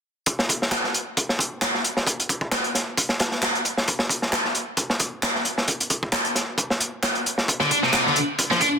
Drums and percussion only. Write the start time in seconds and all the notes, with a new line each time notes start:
0.26 kick, closed hi-hat
0.39 snare
0.49 kick, closed hi-hat
0.62 snare
0.71 snare, clap, closed hi-hat
0.84 snare
0.94 closed hi-hat
1.17 kick, closed hi-hat
1.29 snare
1.39 kick, closed hi-hat
1.62 snare, clap, closed hi-hat
1.74 snare
1.84 closed hi-hat
1.97 snare
2.07 kick, closed hi-hat
2.20 closed hi-hat
2.29 kick, closed hi-hat
2.41 kick
2.52 snare, clap, closed hi-hat
2.64 closed hi-hat
2.75 snare, closed hi-hat
2.97 kick, closed hi-hat
3.09 snare
3.20 snare, closed hi-hat
3.31 snare
3.42 snare, clap, closed hi-hat
3.55 closed hi-hat
3.65 closed hi-hat
3.77 snare
3.88 kick, closed hi-hat
3.99 snare
4.09 kick, closed hi-hat
4.22 snare
4.32 snare, clap, closed hi-hat
4.45 snare
4.55 closed hi-hat
4.77 kick, closed hi-hat
4.90 snare
5.00 kick, closed hi-hat
5.23 snare, clap, closed hi-hat
5.35 snare
5.45 closed hi-hat
5.58 snare
5.68 kick, closed hi-hat
5.80 closed hi-hat
5.90 kick, closed hi-hat
6.03 kick
6.12 snare, clap, closed hi-hat
6.25 closed hi-hat
6.35 snare, closed hi-hat
6.58 kick, closed hi-hat
6.70 snare
6.80 closed hi-hat
7.03 snare, clap, closed hi-hat
7.15 closed hi-hat
7.26 closed hi-hat
7.38 snare
7.48 kick, closed hi-hat
7.60 snare
7.71 kick, closed hi-hat
7.83 snare
7.93 snare, clap, closed hi-hat
8.06 snare
8.16 closed hi-hat
8.39 kick, closed hi-hat
8.51 snare
8.61 kick, closed hi-hat